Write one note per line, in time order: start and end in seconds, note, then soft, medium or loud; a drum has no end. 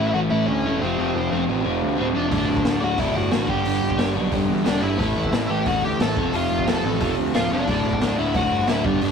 0.00 0.13 A1 medium
0.00 0.15 A2 medium
0.00 0.14 E3 medium
0.00 0.14 A3 medium
0.00 0.11 E4 medium
0.00 0.14 E5 medium
0.14 0.30 A1 medium
0.14 0.30 A2 medium
0.14 0.31 E3 medium
0.14 0.32 A3 medium
0.14 0.20 F#4 medium
0.14 0.19 F#5 loud
0.30 0.47 A1 medium
0.30 0.64 A2 loud
0.30 0.64 E3 medium
0.30 0.66 A3 loud
0.30 0.46 E4 medium
0.30 0.46 E5 medium
0.46 0.63 D2 medium
0.46 0.78 C#4 medium
0.46 0.80 C#5 medium
0.64 0.80 E1 medium
0.64 0.81 A2 medium
0.64 0.81 E3 medium
0.64 0.83 A3 medium
0.81 0.97 F1 medium
0.81 0.98 F2 loud
0.81 0.98 C3 loud
0.81 0.97 F3 loud
0.81 1.44 C4 medium
0.81 1.44 C5 medium
0.98 1.13 F1 medium
0.98 1.31 F2 medium
0.98 1.31 C3 medium
0.98 1.30 F3 medium
1.15 1.30 F1 medium
1.31 1.47 F1 medium
1.31 1.47 F2 medium
1.31 1.48 C3 medium
1.31 1.48 F3 medium
1.48 1.64 A1 medium
1.48 1.64 F2 medium
1.48 1.64 C3 medium
1.48 1.63 F3 medium
1.64 1.81 F1 medium
1.64 1.98 F2 medium
1.64 1.97 C3 loud
1.64 1.97 F3 loud
1.82 1.97 D2 medium
1.98 2.14 D1 medium
1.98 2.13 F2 medium
1.98 2.14 C3 medium
1.98 2.15 F3 medium
1.98 2.05 C4 medium
1.98 2.06 C5 medium
2.15 2.31 F1 medium
2.15 2.30 F2 medium
2.15 2.31 C3 medium
2.15 2.31 F3 medium
2.15 2.78 D4 medium
2.15 2.85 D5 medium
2.31 2.47 D1 medium
2.31 2.64 D2 medium
2.31 2.65 A2 loud
2.31 2.65 D3 medium
2.31 kick loud
2.31 open hi-hat medium
2.48 2.64 D1 medium
2.56 kick medium
2.65 2.81 D1 medium
2.65 2.81 D2 medium
2.65 2.81 A2 medium
2.65 2.80 D3 medium
2.65 snare loud
2.65 open hi-hat medium
2.82 2.98 D1 medium
2.82 2.97 D2 medium
2.82 2.98 A2 medium
2.82 2.98 D3 medium
2.82 2.98 F#4 medium
2.82 2.99 F#5 medium
2.98 3.14 D1 medium
2.98 3.30 D2 loud
2.98 3.31 A2 loud
2.98 3.31 D3 loud
2.98 3.14 E4 medium
2.98 3.16 E5 medium
2.98 kick loud
2.98 open hi-hat medium
3.16 3.31 G1 medium
3.16 3.47 F#4 medium
3.16 3.49 F#5 loud
3.31 3.48 A1 medium
3.31 3.47 D2 medium
3.31 3.48 A2 medium
3.31 3.48 D3 medium
3.31 snare loud
3.31 open hi-hat medium
3.48 3.64 G1 medium
3.48 3.65 G2 medium
3.48 3.65 D3 medium
3.48 3.64 G3 loud
3.48 4.12 G4 medium
3.48 4.12 G5 loud
3.48 kick loud
3.65 3.81 G1 medium
3.65 3.98 G2 medium
3.65 3.97 D3 loud
3.65 3.97 G3 medium
3.65 open hi-hat medium
3.82 3.98 G1 medium
3.90 kick medium
3.98 4.15 G1 medium
3.98 4.13 G2 medium
3.98 4.13 D3 medium
3.98 4.14 G3 medium
3.98 snare loud
3.98 open hi-hat medium
4.14 4.31 B1 medium
4.14 4.31 G2 medium
4.14 4.31 D3 medium
4.14 4.30 G3 medium
4.31 4.47 G1 medium
4.31 4.64 G2 loud
4.31 4.64 D3 loud
4.31 4.63 G3 loud
4.31 kick loud
4.31 open hi-hat medium
4.48 4.64 E2 medium
4.64 4.81 E1 medium
4.64 4.79 G2 medium
4.64 4.80 D3 medium
4.64 4.81 G3 medium
4.64 4.82 D4 medium
4.64 4.83 D5 medium
4.64 snare loud
4.64 open hi-hat medium
4.80 4.98 G1 medium
4.80 4.97 G2 medium
4.80 4.98 D3 medium
4.80 4.98 G3 medium
4.80 5.45 E4 medium
4.80 5.52 E5 loud
4.97 5.15 A1 loud
4.97 5.31 A2 loud
4.97 5.32 E3 medium
4.97 5.33 A3 loud
4.97 kick loud
4.97 open hi-hat medium
5.16 5.32 A1 medium
5.24 kick medium
5.32 5.49 A1 medium
5.32 5.49 A2 medium
5.32 5.49 E3 medium
5.32 5.49 A3 medium
5.32 snare loud
5.32 open hi-hat medium
5.49 5.65 A1 medium
5.49 5.64 A2 medium
5.49 5.65 E3 medium
5.49 5.67 A3 loud
5.49 5.66 G4 medium
5.49 5.67 G5 medium
5.66 5.82 A1 loud
5.66 5.99 A2 medium
5.66 6.00 E3 medium
5.66 6.01 A3 loud
5.66 5.82 F#4 medium
5.66 5.85 F#5 medium
5.66 kick loud
5.66 open hi-hat medium
5.83 5.99 D2 loud
5.83 5.99 G4 medium
5.83 6.01 G5 medium
6.00 6.16 A1 medium
6.00 6.16 A2 medium
6.00 6.16 E3 medium
6.00 6.18 A3 loud
6.00 6.32 A4 medium
6.00 6.35 A5 medium
6.00 snare loud
6.00 open hi-hat medium
6.17 6.32 F1 medium
6.17 6.34 F2 medium
6.17 6.33 C3 medium
6.17 6.33 F3 loud
6.17 kick loud
6.33 6.49 F1 medium
6.33 6.67 F2 medium
6.33 6.67 C3 medium
6.33 6.66 F3 medium
6.33 6.66 F4 medium
6.33 6.69 F5 medium
6.33 open hi-hat medium
6.50 6.66 F1 medium
6.59 kick medium
6.67 6.83 F1 medium
6.67 6.83 F2 medium
6.67 6.84 C3 medium
6.67 6.84 F3 medium
6.67 7.14 A4 medium
6.67 7.14 A5 medium
6.67 snare loud
6.67 open hi-hat medium
6.84 7.00 A1 medium
6.84 7.01 F2 medium
6.84 7.00 C3 medium
6.84 7.00 F3 medium
7.00 7.16 F1 medium
7.00 7.34 F2 medium
7.00 7.33 C3 loud
7.00 7.33 F3 loud
7.00 kick loud
7.00 open hi-hat medium
7.17 7.33 D2 medium
7.34 7.50 D1 medium
7.34 7.50 F2 medium
7.34 7.51 C3 medium
7.34 7.51 F3 medium
7.34 7.50 F4 medium
7.34 7.50 F5 medium
7.34 snare loud
7.34 open hi-hat medium
7.51 7.67 E1 medium
7.51 7.67 F2 medium
7.51 7.67 C3 medium
7.51 7.67 F3 medium
7.51 8.15 D4 medium
7.51 8.18 D5 medium
7.68 7.83 D1 medium
7.68 8.00 D2 loud
7.68 8.00 A2 medium
7.68 8.01 D3 loud
7.68 kick loud
7.68 open hi-hat medium
7.84 8.00 D1 medium
7.93 kick medium
8.01 8.17 D1 medium
8.01 8.18 D2 medium
8.01 8.18 A2 medium
8.01 8.17 D3 medium
8.01 snare loud
8.01 open hi-hat medium
8.18 8.34 D1 medium
8.18 8.34 D2 medium
8.18 8.34 A2 medium
8.18 8.35 D3 medium
8.18 8.34 E4 medium
8.18 8.35 E5 medium
8.34 8.50 D1 loud
8.34 8.67 D2 loud
8.34 8.67 A2 medium
8.34 8.68 D3 loud
8.34 8.67 F#4 medium
8.34 8.70 F#5 medium
8.34 kick loud
8.34 open hi-hat medium
8.51 8.67 G1 medium
8.67 8.83 D1 medium
8.67 8.83 D2 medium
8.67 8.84 A2 medium
8.67 8.84 D3 medium
8.67 8.83 E4 medium
8.67 8.85 E5 medium
8.67 snare loud
8.67 open hi-hat medium
8.84 9.00 G1 medium
8.84 9.02 G2 loud
8.84 9.01 D3 medium
8.84 9.01 G3 loud
8.84 9.12 D4 medium
8.84 9.12 D5 medium
8.84 kick loud
9.01 9.12 G1 loud
9.01 9.12 G2 medium
9.01 9.12 D3 medium
9.01 9.12 G3 loud
9.01 open hi-hat medium